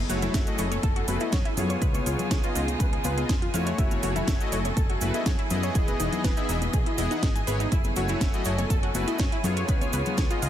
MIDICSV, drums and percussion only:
0, 0, Header, 1, 2, 480
1, 0, Start_track
1, 0, Tempo, 491803
1, 1773, Time_signature, 4, 2, 24, 8
1, 10242, End_track
2, 0, Start_track
2, 0, Title_t, "Drums"
2, 93, Note_on_c, 9, 46, 107
2, 95, Note_on_c, 9, 69, 97
2, 191, Note_off_c, 9, 46, 0
2, 193, Note_off_c, 9, 69, 0
2, 217, Note_on_c, 9, 64, 97
2, 217, Note_on_c, 9, 69, 39
2, 219, Note_on_c, 9, 42, 43
2, 315, Note_off_c, 9, 64, 0
2, 315, Note_off_c, 9, 69, 0
2, 316, Note_off_c, 9, 42, 0
2, 332, Note_on_c, 9, 60, 44
2, 333, Note_on_c, 9, 36, 124
2, 333, Note_on_c, 9, 42, 70
2, 334, Note_on_c, 9, 38, 127
2, 337, Note_on_c, 9, 69, 53
2, 429, Note_off_c, 9, 60, 0
2, 431, Note_off_c, 9, 36, 0
2, 431, Note_off_c, 9, 42, 0
2, 432, Note_off_c, 9, 38, 0
2, 435, Note_off_c, 9, 69, 0
2, 457, Note_on_c, 9, 69, 36
2, 458, Note_on_c, 9, 42, 43
2, 554, Note_off_c, 9, 69, 0
2, 556, Note_off_c, 9, 42, 0
2, 569, Note_on_c, 9, 69, 94
2, 573, Note_on_c, 9, 46, 98
2, 666, Note_off_c, 9, 69, 0
2, 670, Note_off_c, 9, 46, 0
2, 698, Note_on_c, 9, 42, 42
2, 700, Note_on_c, 9, 63, 98
2, 700, Note_on_c, 9, 69, 43
2, 796, Note_off_c, 9, 42, 0
2, 797, Note_off_c, 9, 63, 0
2, 797, Note_off_c, 9, 69, 0
2, 811, Note_on_c, 9, 69, 53
2, 813, Note_on_c, 9, 36, 113
2, 813, Note_on_c, 9, 42, 74
2, 814, Note_on_c, 9, 60, 86
2, 909, Note_off_c, 9, 69, 0
2, 910, Note_off_c, 9, 36, 0
2, 910, Note_off_c, 9, 42, 0
2, 911, Note_off_c, 9, 60, 0
2, 938, Note_on_c, 9, 42, 43
2, 1036, Note_off_c, 9, 42, 0
2, 1053, Note_on_c, 9, 46, 104
2, 1053, Note_on_c, 9, 69, 98
2, 1058, Note_on_c, 9, 63, 104
2, 1150, Note_off_c, 9, 46, 0
2, 1151, Note_off_c, 9, 69, 0
2, 1156, Note_off_c, 9, 63, 0
2, 1170, Note_on_c, 9, 69, 39
2, 1178, Note_on_c, 9, 42, 42
2, 1268, Note_off_c, 9, 69, 0
2, 1276, Note_off_c, 9, 42, 0
2, 1288, Note_on_c, 9, 60, 89
2, 1293, Note_on_c, 9, 36, 123
2, 1293, Note_on_c, 9, 42, 71
2, 1294, Note_on_c, 9, 69, 49
2, 1295, Note_on_c, 9, 38, 127
2, 1386, Note_off_c, 9, 60, 0
2, 1390, Note_off_c, 9, 36, 0
2, 1391, Note_off_c, 9, 42, 0
2, 1391, Note_off_c, 9, 69, 0
2, 1392, Note_off_c, 9, 38, 0
2, 1419, Note_on_c, 9, 42, 43
2, 1517, Note_off_c, 9, 42, 0
2, 1533, Note_on_c, 9, 46, 93
2, 1536, Note_on_c, 9, 64, 112
2, 1536, Note_on_c, 9, 69, 89
2, 1631, Note_off_c, 9, 46, 0
2, 1634, Note_off_c, 9, 64, 0
2, 1634, Note_off_c, 9, 69, 0
2, 1656, Note_on_c, 9, 69, 41
2, 1659, Note_on_c, 9, 42, 43
2, 1754, Note_off_c, 9, 69, 0
2, 1757, Note_off_c, 9, 42, 0
2, 1767, Note_on_c, 9, 60, 41
2, 1773, Note_on_c, 9, 36, 127
2, 1773, Note_on_c, 9, 42, 70
2, 1776, Note_on_c, 9, 69, 51
2, 1865, Note_off_c, 9, 60, 0
2, 1870, Note_off_c, 9, 36, 0
2, 1871, Note_off_c, 9, 42, 0
2, 1873, Note_off_c, 9, 69, 0
2, 1894, Note_on_c, 9, 63, 92
2, 1898, Note_on_c, 9, 69, 42
2, 1899, Note_on_c, 9, 42, 43
2, 1991, Note_off_c, 9, 63, 0
2, 1996, Note_off_c, 9, 42, 0
2, 1996, Note_off_c, 9, 69, 0
2, 2013, Note_on_c, 9, 46, 111
2, 2017, Note_on_c, 9, 69, 93
2, 2111, Note_off_c, 9, 46, 0
2, 2114, Note_off_c, 9, 69, 0
2, 2139, Note_on_c, 9, 42, 41
2, 2139, Note_on_c, 9, 69, 41
2, 2140, Note_on_c, 9, 64, 101
2, 2237, Note_off_c, 9, 42, 0
2, 2237, Note_off_c, 9, 69, 0
2, 2238, Note_off_c, 9, 64, 0
2, 2253, Note_on_c, 9, 36, 127
2, 2253, Note_on_c, 9, 42, 69
2, 2255, Note_on_c, 9, 38, 123
2, 2256, Note_on_c, 9, 69, 54
2, 2268, Note_on_c, 9, 60, 85
2, 2350, Note_off_c, 9, 36, 0
2, 2351, Note_off_c, 9, 42, 0
2, 2353, Note_off_c, 9, 38, 0
2, 2354, Note_off_c, 9, 69, 0
2, 2365, Note_off_c, 9, 60, 0
2, 2376, Note_on_c, 9, 69, 37
2, 2379, Note_on_c, 9, 42, 42
2, 2474, Note_off_c, 9, 69, 0
2, 2476, Note_off_c, 9, 42, 0
2, 2493, Note_on_c, 9, 46, 101
2, 2495, Note_on_c, 9, 69, 105
2, 2591, Note_off_c, 9, 46, 0
2, 2593, Note_off_c, 9, 69, 0
2, 2614, Note_on_c, 9, 63, 90
2, 2618, Note_on_c, 9, 42, 43
2, 2623, Note_on_c, 9, 69, 40
2, 2712, Note_off_c, 9, 63, 0
2, 2716, Note_off_c, 9, 42, 0
2, 2721, Note_off_c, 9, 69, 0
2, 2730, Note_on_c, 9, 60, 84
2, 2733, Note_on_c, 9, 36, 120
2, 2733, Note_on_c, 9, 42, 73
2, 2735, Note_on_c, 9, 69, 54
2, 2828, Note_off_c, 9, 60, 0
2, 2830, Note_off_c, 9, 36, 0
2, 2831, Note_off_c, 9, 42, 0
2, 2832, Note_off_c, 9, 69, 0
2, 2859, Note_on_c, 9, 42, 44
2, 2956, Note_off_c, 9, 42, 0
2, 2969, Note_on_c, 9, 69, 94
2, 2971, Note_on_c, 9, 63, 100
2, 2974, Note_on_c, 9, 46, 112
2, 3066, Note_off_c, 9, 69, 0
2, 3069, Note_off_c, 9, 63, 0
2, 3071, Note_off_c, 9, 46, 0
2, 3099, Note_on_c, 9, 42, 40
2, 3101, Note_on_c, 9, 69, 43
2, 3197, Note_off_c, 9, 42, 0
2, 3199, Note_off_c, 9, 69, 0
2, 3212, Note_on_c, 9, 60, 41
2, 3213, Note_on_c, 9, 36, 127
2, 3213, Note_on_c, 9, 42, 70
2, 3215, Note_on_c, 9, 38, 127
2, 3215, Note_on_c, 9, 69, 48
2, 3310, Note_off_c, 9, 36, 0
2, 3310, Note_off_c, 9, 60, 0
2, 3311, Note_off_c, 9, 42, 0
2, 3312, Note_off_c, 9, 38, 0
2, 3313, Note_off_c, 9, 69, 0
2, 3339, Note_on_c, 9, 42, 42
2, 3437, Note_off_c, 9, 42, 0
2, 3453, Note_on_c, 9, 46, 100
2, 3465, Note_on_c, 9, 69, 104
2, 3551, Note_off_c, 9, 46, 0
2, 3562, Note_off_c, 9, 69, 0
2, 3577, Note_on_c, 9, 69, 41
2, 3579, Note_on_c, 9, 42, 40
2, 3675, Note_off_c, 9, 69, 0
2, 3676, Note_off_c, 9, 42, 0
2, 3693, Note_on_c, 9, 36, 127
2, 3693, Note_on_c, 9, 60, 79
2, 3693, Note_on_c, 9, 69, 55
2, 3694, Note_on_c, 9, 42, 68
2, 3790, Note_off_c, 9, 60, 0
2, 3791, Note_off_c, 9, 36, 0
2, 3791, Note_off_c, 9, 42, 0
2, 3791, Note_off_c, 9, 69, 0
2, 3818, Note_on_c, 9, 63, 84
2, 3818, Note_on_c, 9, 69, 42
2, 3819, Note_on_c, 9, 42, 39
2, 3915, Note_off_c, 9, 69, 0
2, 3916, Note_off_c, 9, 42, 0
2, 3916, Note_off_c, 9, 63, 0
2, 3932, Note_on_c, 9, 69, 93
2, 3933, Note_on_c, 9, 46, 112
2, 4030, Note_off_c, 9, 69, 0
2, 4031, Note_off_c, 9, 46, 0
2, 4059, Note_on_c, 9, 42, 38
2, 4060, Note_on_c, 9, 64, 97
2, 4062, Note_on_c, 9, 69, 43
2, 4156, Note_off_c, 9, 42, 0
2, 4157, Note_off_c, 9, 64, 0
2, 4160, Note_off_c, 9, 69, 0
2, 4171, Note_on_c, 9, 60, 90
2, 4173, Note_on_c, 9, 36, 127
2, 4173, Note_on_c, 9, 42, 66
2, 4175, Note_on_c, 9, 38, 123
2, 4178, Note_on_c, 9, 69, 59
2, 4268, Note_off_c, 9, 60, 0
2, 4271, Note_off_c, 9, 36, 0
2, 4271, Note_off_c, 9, 42, 0
2, 4272, Note_off_c, 9, 38, 0
2, 4276, Note_off_c, 9, 69, 0
2, 4299, Note_on_c, 9, 42, 39
2, 4302, Note_on_c, 9, 69, 40
2, 4396, Note_off_c, 9, 42, 0
2, 4400, Note_off_c, 9, 69, 0
2, 4413, Note_on_c, 9, 46, 103
2, 4415, Note_on_c, 9, 69, 103
2, 4511, Note_off_c, 9, 46, 0
2, 4513, Note_off_c, 9, 69, 0
2, 4539, Note_on_c, 9, 42, 40
2, 4539, Note_on_c, 9, 69, 39
2, 4541, Note_on_c, 9, 63, 95
2, 4636, Note_off_c, 9, 42, 0
2, 4636, Note_off_c, 9, 69, 0
2, 4638, Note_off_c, 9, 63, 0
2, 4649, Note_on_c, 9, 60, 42
2, 4653, Note_on_c, 9, 36, 121
2, 4653, Note_on_c, 9, 42, 71
2, 4657, Note_on_c, 9, 69, 56
2, 4746, Note_off_c, 9, 60, 0
2, 4751, Note_off_c, 9, 36, 0
2, 4751, Note_off_c, 9, 42, 0
2, 4755, Note_off_c, 9, 69, 0
2, 4779, Note_on_c, 9, 42, 43
2, 4876, Note_off_c, 9, 42, 0
2, 4891, Note_on_c, 9, 69, 107
2, 4892, Note_on_c, 9, 63, 96
2, 4893, Note_on_c, 9, 46, 113
2, 4988, Note_off_c, 9, 69, 0
2, 4989, Note_off_c, 9, 63, 0
2, 4991, Note_off_c, 9, 46, 0
2, 5018, Note_on_c, 9, 42, 40
2, 5019, Note_on_c, 9, 69, 40
2, 5116, Note_off_c, 9, 42, 0
2, 5117, Note_off_c, 9, 69, 0
2, 5132, Note_on_c, 9, 60, 90
2, 5133, Note_on_c, 9, 36, 127
2, 5133, Note_on_c, 9, 42, 66
2, 5134, Note_on_c, 9, 38, 125
2, 5135, Note_on_c, 9, 69, 50
2, 5230, Note_off_c, 9, 42, 0
2, 5230, Note_off_c, 9, 60, 0
2, 5231, Note_off_c, 9, 36, 0
2, 5232, Note_off_c, 9, 38, 0
2, 5233, Note_off_c, 9, 69, 0
2, 5258, Note_on_c, 9, 42, 41
2, 5356, Note_off_c, 9, 42, 0
2, 5372, Note_on_c, 9, 69, 95
2, 5373, Note_on_c, 9, 46, 100
2, 5373, Note_on_c, 9, 64, 105
2, 5469, Note_off_c, 9, 69, 0
2, 5470, Note_off_c, 9, 46, 0
2, 5471, Note_off_c, 9, 64, 0
2, 5495, Note_on_c, 9, 69, 43
2, 5498, Note_on_c, 9, 42, 38
2, 5593, Note_off_c, 9, 69, 0
2, 5596, Note_off_c, 9, 42, 0
2, 5611, Note_on_c, 9, 60, 79
2, 5612, Note_on_c, 9, 69, 53
2, 5613, Note_on_c, 9, 36, 127
2, 5613, Note_on_c, 9, 42, 69
2, 5709, Note_off_c, 9, 60, 0
2, 5710, Note_off_c, 9, 69, 0
2, 5711, Note_off_c, 9, 36, 0
2, 5711, Note_off_c, 9, 42, 0
2, 5737, Note_on_c, 9, 69, 35
2, 5739, Note_on_c, 9, 42, 39
2, 5740, Note_on_c, 9, 63, 88
2, 5835, Note_off_c, 9, 69, 0
2, 5836, Note_off_c, 9, 42, 0
2, 5838, Note_off_c, 9, 63, 0
2, 5853, Note_on_c, 9, 46, 110
2, 5856, Note_on_c, 9, 69, 104
2, 5951, Note_off_c, 9, 46, 0
2, 5954, Note_off_c, 9, 69, 0
2, 5977, Note_on_c, 9, 64, 100
2, 5979, Note_on_c, 9, 42, 38
2, 5983, Note_on_c, 9, 69, 39
2, 6075, Note_off_c, 9, 64, 0
2, 6076, Note_off_c, 9, 42, 0
2, 6081, Note_off_c, 9, 69, 0
2, 6093, Note_on_c, 9, 36, 127
2, 6094, Note_on_c, 9, 42, 62
2, 6094, Note_on_c, 9, 69, 53
2, 6095, Note_on_c, 9, 38, 115
2, 6191, Note_off_c, 9, 36, 0
2, 6191, Note_off_c, 9, 42, 0
2, 6192, Note_off_c, 9, 69, 0
2, 6193, Note_off_c, 9, 38, 0
2, 6216, Note_on_c, 9, 69, 41
2, 6219, Note_on_c, 9, 42, 39
2, 6314, Note_off_c, 9, 69, 0
2, 6317, Note_off_c, 9, 42, 0
2, 6334, Note_on_c, 9, 46, 100
2, 6337, Note_on_c, 9, 69, 98
2, 6431, Note_off_c, 9, 46, 0
2, 6434, Note_off_c, 9, 69, 0
2, 6455, Note_on_c, 9, 63, 90
2, 6459, Note_on_c, 9, 42, 39
2, 6463, Note_on_c, 9, 69, 39
2, 6553, Note_off_c, 9, 63, 0
2, 6557, Note_off_c, 9, 42, 0
2, 6561, Note_off_c, 9, 69, 0
2, 6571, Note_on_c, 9, 69, 57
2, 6573, Note_on_c, 9, 36, 117
2, 6574, Note_on_c, 9, 42, 68
2, 6576, Note_on_c, 9, 60, 68
2, 6669, Note_off_c, 9, 69, 0
2, 6670, Note_off_c, 9, 36, 0
2, 6671, Note_off_c, 9, 42, 0
2, 6674, Note_off_c, 9, 60, 0
2, 6699, Note_on_c, 9, 42, 39
2, 6796, Note_off_c, 9, 42, 0
2, 6812, Note_on_c, 9, 69, 96
2, 6814, Note_on_c, 9, 46, 112
2, 6816, Note_on_c, 9, 63, 87
2, 6910, Note_off_c, 9, 69, 0
2, 6911, Note_off_c, 9, 46, 0
2, 6914, Note_off_c, 9, 63, 0
2, 6939, Note_on_c, 9, 42, 37
2, 6947, Note_on_c, 9, 69, 44
2, 7037, Note_off_c, 9, 42, 0
2, 7044, Note_off_c, 9, 69, 0
2, 7053, Note_on_c, 9, 36, 127
2, 7053, Note_on_c, 9, 42, 66
2, 7053, Note_on_c, 9, 60, 75
2, 7055, Note_on_c, 9, 38, 126
2, 7056, Note_on_c, 9, 69, 47
2, 7150, Note_off_c, 9, 36, 0
2, 7150, Note_off_c, 9, 60, 0
2, 7151, Note_off_c, 9, 42, 0
2, 7152, Note_off_c, 9, 38, 0
2, 7154, Note_off_c, 9, 69, 0
2, 7179, Note_on_c, 9, 42, 40
2, 7184, Note_on_c, 9, 69, 38
2, 7277, Note_off_c, 9, 42, 0
2, 7281, Note_off_c, 9, 69, 0
2, 7293, Note_on_c, 9, 46, 94
2, 7298, Note_on_c, 9, 69, 105
2, 7390, Note_off_c, 9, 46, 0
2, 7396, Note_off_c, 9, 69, 0
2, 7419, Note_on_c, 9, 42, 38
2, 7420, Note_on_c, 9, 63, 54
2, 7420, Note_on_c, 9, 69, 40
2, 7516, Note_off_c, 9, 42, 0
2, 7517, Note_off_c, 9, 63, 0
2, 7518, Note_off_c, 9, 69, 0
2, 7532, Note_on_c, 9, 60, 82
2, 7533, Note_on_c, 9, 36, 124
2, 7533, Note_on_c, 9, 42, 65
2, 7537, Note_on_c, 9, 69, 54
2, 7630, Note_off_c, 9, 36, 0
2, 7630, Note_off_c, 9, 60, 0
2, 7631, Note_off_c, 9, 42, 0
2, 7634, Note_off_c, 9, 69, 0
2, 7654, Note_on_c, 9, 69, 38
2, 7658, Note_on_c, 9, 42, 39
2, 7659, Note_on_c, 9, 63, 101
2, 7751, Note_off_c, 9, 69, 0
2, 7756, Note_off_c, 9, 42, 0
2, 7757, Note_off_c, 9, 63, 0
2, 7770, Note_on_c, 9, 69, 100
2, 7773, Note_on_c, 9, 46, 110
2, 7867, Note_off_c, 9, 69, 0
2, 7871, Note_off_c, 9, 46, 0
2, 7890, Note_on_c, 9, 69, 42
2, 7899, Note_on_c, 9, 42, 39
2, 7902, Note_on_c, 9, 64, 96
2, 7987, Note_off_c, 9, 69, 0
2, 7996, Note_off_c, 9, 42, 0
2, 7999, Note_off_c, 9, 64, 0
2, 8013, Note_on_c, 9, 36, 126
2, 8013, Note_on_c, 9, 42, 61
2, 8014, Note_on_c, 9, 60, 41
2, 8014, Note_on_c, 9, 69, 54
2, 8015, Note_on_c, 9, 38, 115
2, 8110, Note_off_c, 9, 36, 0
2, 8111, Note_off_c, 9, 42, 0
2, 8112, Note_off_c, 9, 38, 0
2, 8112, Note_off_c, 9, 60, 0
2, 8112, Note_off_c, 9, 69, 0
2, 8135, Note_on_c, 9, 69, 34
2, 8139, Note_on_c, 9, 42, 38
2, 8232, Note_off_c, 9, 69, 0
2, 8236, Note_off_c, 9, 42, 0
2, 8244, Note_on_c, 9, 69, 100
2, 8253, Note_on_c, 9, 46, 101
2, 8342, Note_off_c, 9, 69, 0
2, 8351, Note_off_c, 9, 46, 0
2, 8378, Note_on_c, 9, 69, 39
2, 8379, Note_on_c, 9, 42, 38
2, 8382, Note_on_c, 9, 63, 88
2, 8475, Note_off_c, 9, 69, 0
2, 8476, Note_off_c, 9, 42, 0
2, 8479, Note_off_c, 9, 63, 0
2, 8493, Note_on_c, 9, 36, 115
2, 8493, Note_on_c, 9, 42, 68
2, 8495, Note_on_c, 9, 69, 61
2, 8501, Note_on_c, 9, 60, 71
2, 8590, Note_off_c, 9, 36, 0
2, 8591, Note_off_c, 9, 42, 0
2, 8592, Note_off_c, 9, 69, 0
2, 8598, Note_off_c, 9, 60, 0
2, 8619, Note_on_c, 9, 42, 42
2, 8716, Note_off_c, 9, 42, 0
2, 8731, Note_on_c, 9, 69, 100
2, 8733, Note_on_c, 9, 46, 102
2, 8733, Note_on_c, 9, 63, 97
2, 8829, Note_off_c, 9, 69, 0
2, 8831, Note_off_c, 9, 46, 0
2, 8831, Note_off_c, 9, 63, 0
2, 8859, Note_on_c, 9, 42, 39
2, 8862, Note_on_c, 9, 69, 38
2, 8956, Note_off_c, 9, 42, 0
2, 8960, Note_off_c, 9, 69, 0
2, 8964, Note_on_c, 9, 69, 56
2, 8967, Note_on_c, 9, 60, 84
2, 8973, Note_on_c, 9, 36, 121
2, 8973, Note_on_c, 9, 42, 66
2, 8975, Note_on_c, 9, 38, 124
2, 9061, Note_off_c, 9, 69, 0
2, 9064, Note_off_c, 9, 60, 0
2, 9070, Note_off_c, 9, 36, 0
2, 9071, Note_off_c, 9, 42, 0
2, 9072, Note_off_c, 9, 38, 0
2, 9099, Note_on_c, 9, 42, 39
2, 9196, Note_off_c, 9, 42, 0
2, 9209, Note_on_c, 9, 64, 92
2, 9213, Note_on_c, 9, 46, 93
2, 9221, Note_on_c, 9, 69, 102
2, 9306, Note_off_c, 9, 64, 0
2, 9311, Note_off_c, 9, 46, 0
2, 9318, Note_off_c, 9, 69, 0
2, 9338, Note_on_c, 9, 69, 39
2, 9339, Note_on_c, 9, 42, 40
2, 9436, Note_off_c, 9, 42, 0
2, 9436, Note_off_c, 9, 69, 0
2, 9449, Note_on_c, 9, 60, 36
2, 9450, Note_on_c, 9, 69, 47
2, 9453, Note_on_c, 9, 36, 122
2, 9453, Note_on_c, 9, 42, 68
2, 9547, Note_off_c, 9, 60, 0
2, 9547, Note_off_c, 9, 69, 0
2, 9550, Note_off_c, 9, 36, 0
2, 9551, Note_off_c, 9, 42, 0
2, 9576, Note_on_c, 9, 63, 93
2, 9579, Note_on_c, 9, 42, 38
2, 9587, Note_on_c, 9, 69, 39
2, 9674, Note_off_c, 9, 63, 0
2, 9676, Note_off_c, 9, 42, 0
2, 9685, Note_off_c, 9, 69, 0
2, 9690, Note_on_c, 9, 69, 99
2, 9693, Note_on_c, 9, 46, 102
2, 9788, Note_off_c, 9, 69, 0
2, 9791, Note_off_c, 9, 46, 0
2, 9815, Note_on_c, 9, 69, 37
2, 9819, Note_on_c, 9, 42, 40
2, 9826, Note_on_c, 9, 64, 98
2, 9912, Note_off_c, 9, 69, 0
2, 9916, Note_off_c, 9, 42, 0
2, 9923, Note_off_c, 9, 64, 0
2, 9931, Note_on_c, 9, 69, 50
2, 9933, Note_on_c, 9, 36, 119
2, 9933, Note_on_c, 9, 42, 64
2, 9935, Note_on_c, 9, 38, 114
2, 9935, Note_on_c, 9, 60, 84
2, 10029, Note_off_c, 9, 69, 0
2, 10030, Note_off_c, 9, 36, 0
2, 10031, Note_off_c, 9, 42, 0
2, 10032, Note_off_c, 9, 38, 0
2, 10032, Note_off_c, 9, 60, 0
2, 10058, Note_on_c, 9, 42, 39
2, 10058, Note_on_c, 9, 69, 37
2, 10156, Note_off_c, 9, 42, 0
2, 10156, Note_off_c, 9, 69, 0
2, 10173, Note_on_c, 9, 46, 93
2, 10174, Note_on_c, 9, 69, 95
2, 10242, Note_off_c, 9, 46, 0
2, 10242, Note_off_c, 9, 69, 0
2, 10242, End_track
0, 0, End_of_file